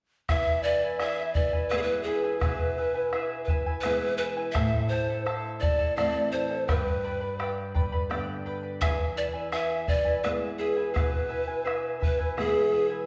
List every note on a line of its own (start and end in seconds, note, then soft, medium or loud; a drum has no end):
0.29 2.38 E2 medium
0.29 0.64 E4 medium
0.29 0.65 G#4 medium
0.29 0.64 B4 medium
0.29 0.62 E5 medium
0.29 0.63 E5 medium
0.29 0.64 G#5 medium
0.29 bombo rim medium
0.29 bombo low medium
0.63 0.82 E4 soft
0.63 0.82 B4 medium
0.63 0.97 D5 medium
0.63 0.82 E5 medium
0.63 0.81 G#5 medium
0.82 1.00 E4 soft
0.82 1.00 B4 soft
0.82 1.00 G#5 medium
1.00 1.35 E4 medium
1.00 1.36 G#4 medium
1.00 1.35 B4 medium
1.00 1.33 E5 medium
1.00 1.35 E5 medium
1.00 1.36 G#5 medium
1.00 bombo rim medium
1.34 1.53 E4 medium
1.34 1.52 B4 medium
1.34 1.71 D5 medium
1.34 1.54 E5 soft
1.34 1.52 G#5 medium
1.34 bombo rim soft
1.34 bombo low medium
1.53 1.71 E4 soft
1.53 1.71 B4 soft
1.53 1.71 G#5 medium
1.69 2.40 E3 soft
1.69 2.41 G#3 soft
1.69 2.41 B3 soft
1.69 2.06 E4 medium
1.69 2.07 G#4 medium
1.69 1.79 B4 medium
1.69 2.06 B4 medium
1.69 2.05 E5 medium
1.69 2.07 G#5 medium
1.69 bombo rim medium
1.78 1.84 G#4 medium
1.82 2.03 B4 medium
1.88 bombo rim soft
2.03 2.24 E4 medium
2.03 2.38 G#4 medium
2.03 2.23 B4 medium
2.03 2.24 E5 soft
2.03 bombo rim soft
2.08 2.23 G#5 medium
2.24 2.41 E4 soft
2.24 2.42 B4 soft
2.24 2.42 G#5 soft
2.24 bombo rim soft
2.40 4.52 B2 medium
2.40 2.77 E4 medium
2.40 2.78 G#4 medium
2.40 3.44 B4 medium
2.40 2.77 B4 medium
2.40 2.77 E5 medium
2.40 2.78 G#5 medium
2.40 bombo rim medium
2.40 bombo low medium
2.78 2.94 E4 medium
2.78 2.94 B4 medium
2.78 2.96 E5 medium
2.78 2.93 G#5 medium
2.94 3.12 E4 soft
2.94 3.13 B4 soft
2.94 3.12 G#5 medium
3.13 3.48 E4 medium
3.13 3.49 G#4 medium
3.13 3.49 B4 medium
3.13 3.48 E5 medium
3.13 3.49 G#5 medium
3.13 bombo rim medium
3.45 3.53 B4 medium
3.45 bombo rim soft
3.45 bombo low medium
3.49 3.66 E4 medium
3.49 3.66 B4 medium
3.49 3.67 E5 soft
3.49 3.65 G#5 medium
3.66 3.83 E4 soft
3.66 3.84 B4 soft
3.66 3.84 G#5 soft
3.81 4.54 E3 soft
3.81 4.54 G#3 soft
3.81 4.18 E4 medium
3.81 4.20 G#4 medium
3.81 4.16 B4 medium
3.81 4.18 E5 medium
3.81 bombo rim medium
3.85 4.54 B3 soft
3.85 4.18 B4 medium
3.85 4.19 G#5 medium
4.02 bombo rim soft
4.18 4.37 E4 medium
4.18 4.26 B4 medium
4.18 4.36 B4 medium
4.18 4.37 E5 medium
4.18 4.36 G#5 medium
4.18 bombo rim soft
4.37 4.53 E4 soft
4.37 4.55 B4 soft
4.37 4.55 G#5 soft
4.37 bombo rim soft
4.52 4.91 E4 medium
4.52 4.91 A4 medium
4.52 4.91 C5 medium
4.52 4.87 E5 medium
4.52 4.90 E5 medium
4.52 4.91 A5 medium
4.52 bombo rim medium
4.52 bombo low medium
4.56 6.65 A2 medium
4.89 5.09 E4 medium
4.89 5.08 A4 medium
4.89 5.31 C5 medium
4.89 5.09 E5 medium
4.89 5.07 A5 medium
5.08 5.25 E4 soft
5.08 5.25 A4 soft
5.08 5.25 A5 medium
5.26 5.60 E4 medium
5.26 5.61 A4 medium
5.26 5.62 C5 medium
5.26 5.60 E5 medium
5.26 5.61 A5 medium
5.26 bombo rim medium
5.60 5.79 E4 medium
5.60 5.78 A4 medium
5.60 5.94 D5 medium
5.60 5.79 E5 medium
5.60 5.78 A5 medium
5.60 bombo rim soft
5.60 bombo low medium
5.79 5.96 E4 soft
5.79 5.96 A4 soft
5.79 5.96 A5 soft
5.96 6.67 E3 soft
5.96 6.67 A3 soft
5.96 6.67 C4 medium
5.96 6.32 E4 medium
5.96 6.33 A4 medium
5.96 6.33 C5 medium
5.96 6.30 D5 medium
5.96 6.32 E5 medium
5.96 6.33 A5 medium
5.96 bombo rim medium
6.16 bombo rim soft
6.32 6.51 E4 soft
6.32 6.50 A4 medium
6.32 6.69 C5 medium
6.32 6.51 E5 soft
6.32 6.49 A5 medium
6.32 bombo rim soft
6.50 6.68 E4 soft
6.50 6.68 A4 soft
6.50 6.68 A5 soft
6.50 bombo rim soft
6.68 8.79 G2 medium
6.68 7.04 G4 medium
6.68 7.40 B4 medium
6.68 7.03 B4 medium
6.68 7.03 D5 medium
6.68 7.02 G5 medium
6.68 7.03 B5 medium
6.68 bombo rim medium
6.68 bombo low medium
7.03 7.22 B4 medium
7.03 7.21 D5 medium
7.03 7.22 G5 soft
7.03 7.20 B5 medium
7.21 7.38 B4 soft
7.21 7.39 D5 soft
7.21 7.39 B5 medium
7.39 7.75 G4 medium
7.39 7.74 B4 medium
7.39 7.75 D5 medium
7.39 7.73 G5 medium
7.39 7.75 B5 medium
7.39 bombo rim medium
7.58 bombo rim soft
7.74 7.92 B4 medium
7.74 7.92 D5 medium
7.74 7.93 G5 medium
7.74 7.91 B5 medium
7.74 bombo low medium
7.92 8.09 B4 soft
7.92 8.09 D5 soft
7.92 8.09 B5 medium
7.92 bombo rim soft
8.10 8.80 D3 soft
8.10 8.80 G3 soft
8.10 8.80 B3 soft
8.10 8.46 G4 medium
8.10 8.45 B4 medium
8.10 8.45 D5 medium
8.10 8.45 G5 medium
8.10 8.46 B5 medium
8.10 bombo rim medium
8.46 8.63 B4 medium
8.46 8.63 D5 medium
8.46 8.64 G5 medium
8.46 8.62 B5 medium
8.63 8.81 B4 soft
8.63 8.82 D5 soft
8.63 8.82 B5 soft
8.81 10.92 E2 medium
8.81 9.16 E4 medium
8.81 9.17 G#4 medium
8.81 9.16 B4 medium
8.81 8.89 E5 medium
8.81 9.15 E5 medium
8.81 9.17 G#5 medium
8.81 bombo rim medium
8.81 bombo low medium
9.16 9.34 E4 medium
9.16 9.33 B4 medium
9.16 9.26 D5 medium
9.16 9.35 E5 medium
9.16 9.32 G#5 medium
9.33 9.51 E4 soft
9.33 9.52 B4 soft
9.33 9.52 G#5 soft
9.52 9.87 E4 medium
9.52 9.89 G#4 medium
9.52 9.87 B4 medium
9.52 9.86 E5 medium
9.52 9.88 G#5 medium
9.52 bombo rim medium
9.87 10.05 E4 soft
9.87 10.04 B4 soft
9.87 10.22 D5 medium
9.87 10.06 E5 medium
9.87 10.04 G#5 medium
9.87 bombo rim soft
9.87 bombo low medium
10.05 10.23 E4 soft
10.05 10.22 B4 soft
10.05 10.23 G#5 soft
10.23 10.93 E3 soft
10.23 10.94 G#3 soft
10.23 10.94 B3 soft
10.23 10.58 E4 medium
10.23 10.60 G#4 medium
10.23 10.32 B4 medium
10.23 10.59 B4 medium
10.23 10.58 E5 medium
10.23 10.59 G#5 medium
10.23 bombo rim medium
10.43 bombo rim soft
10.59 10.77 E4 medium
10.59 10.93 G#4 medium
10.59 10.76 B4 medium
10.59 10.77 E5 medium
10.59 10.75 G#5 medium
10.59 bombo rim soft
10.76 10.93 E4 soft
10.76 10.93 B4 soft
10.76 10.94 G#5 soft
10.76 bombo rim soft
10.94 13.05 B2 medium
10.94 11.28 E4 medium
10.94 11.30 G#4 medium
10.94 11.97 B4 medium
10.94 11.29 B4 medium
10.94 11.28 E5 medium
10.94 11.29 G#5 medium
10.94 bombo rim medium
10.94 bombo low medium
11.29 11.48 E4 medium
11.29 11.47 B4 medium
11.29 11.48 E5 medium
11.29 11.46 G#5 medium
11.47 11.64 E4 soft
11.47 11.64 B4 soft
11.47 11.65 G#5 soft
11.65 12.00 E4 medium
11.65 12.01 G#4 medium
11.65 12.00 B4 medium
11.65 11.99 E5 medium
11.65 12.00 G#5 medium
11.65 bombo rim medium
12.00 12.19 E4 medium
12.00 12.18 B4 medium
12.00 12.36 B4 medium
12.00 12.19 E5 medium
12.00 12.18 G#5 medium
12.00 bombo rim soft
12.00 bombo low medium
12.19 12.36 E4 soft
12.19 12.37 B4 soft
12.19 12.37 G#5 soft
12.37 13.06 E3 soft
12.37 13.06 G#3 soft
12.37 13.06 B3 soft
12.37 12.71 E4 medium
12.37 12.73 G#4 medium
12.37 12.87 G#4 medium
12.37 12.72 B4 medium
12.37 12.71 E5 medium
12.37 12.73 G#5 medium
12.37 bombo rim medium
12.56 bombo rim soft
12.72 12.90 E4 soft
12.72 12.90 B4 medium
12.72 12.90 E5 soft
12.72 12.89 G#5 medium
12.72 bombo rim soft
12.90 13.06 E4 soft
12.90 13.06 B4 soft
12.90 13.06 G#5 soft
12.90 bombo rim soft